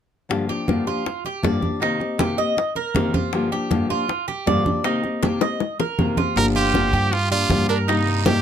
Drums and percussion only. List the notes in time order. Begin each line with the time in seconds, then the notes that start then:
0.30 high bongo, high conga
0.49 high conga
0.68 high bongo, high conga
0.87 high conga
1.06 high bongo, high conga
1.25 high conga
1.43 high bongo, low bongo, high conga
1.63 high conga
1.82 high bongo, high conga
2.00 high bongo, high conga
2.19 high bongo, high conga
2.38 high conga
2.57 high bongo, high conga
2.75 high bongo, high conga
2.95 high bongo, low bongo, high conga
3.14 high bongo, high conga
3.33 high bongo, high conga
3.52 high conga
3.71 high bongo, high conga
3.90 high conga
4.09 high bongo, high conga
4.28 high conga
4.47 high bongo, low bongo, high conga
4.66 high conga
4.84 high bongo, high conga
5.04 high bongo, high conga
5.23 high bongo, high conga
5.41 high bongo, high conga
5.60 high bongo, high conga
5.80 low bongo, high conga
5.99 low bongo, high conga
6.17 low bongo, high conga
6.36 high bongo, high conga, long guiro
6.55 high conga
6.74 high bongo, high conga, short guiro
6.93 high conga, short guiro
7.11 high bongo, high conga, long guiro
7.31 high conga
7.50 high bongo, low bongo, high conga, short guiro
7.69 short guiro
7.88 high bongo, high conga, long guiro
8.07 high bongo, high conga
8.26 high bongo, high conga